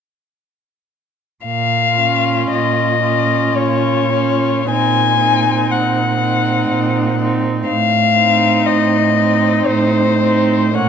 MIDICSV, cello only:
0, 0, Header, 1, 2, 480
1, 0, Start_track
1, 0, Key_signature, -5, "minor"
1, 0, Tempo, 1061947
1, 656, Time_signature, 3, 2, 24, 8
1, 1611, Tempo, 1125704
1, 2091, Tempo, 1022147
1, 2571, Tempo, 988468
1, 4491, Tempo, 1071429
1, 5039, End_track
2, 0, Start_track
2, 0, Title_t, "Cello"
2, 0, Program_c, 0, 42
2, 654, Note_on_c, 0, 46, 38
2, 1079, Note_off_c, 0, 46, 0
2, 1130, Note_on_c, 0, 46, 39
2, 1550, Note_off_c, 0, 46, 0
2, 1606, Note_on_c, 0, 46, 37
2, 2033, Note_off_c, 0, 46, 0
2, 2085, Note_on_c, 0, 46, 43
2, 2511, Note_off_c, 0, 46, 0
2, 2571, Note_on_c, 0, 46, 42
2, 2996, Note_off_c, 0, 46, 0
2, 3050, Note_on_c, 0, 46, 39
2, 3468, Note_off_c, 0, 46, 0
2, 3526, Note_on_c, 0, 45, 40
2, 3950, Note_off_c, 0, 45, 0
2, 4011, Note_on_c, 0, 45, 42
2, 4434, Note_off_c, 0, 45, 0
2, 4488, Note_on_c, 0, 45, 42
2, 4915, Note_off_c, 0, 45, 0
2, 4971, Note_on_c, 0, 46, 44
2, 5039, Note_off_c, 0, 46, 0
2, 5039, End_track
0, 0, End_of_file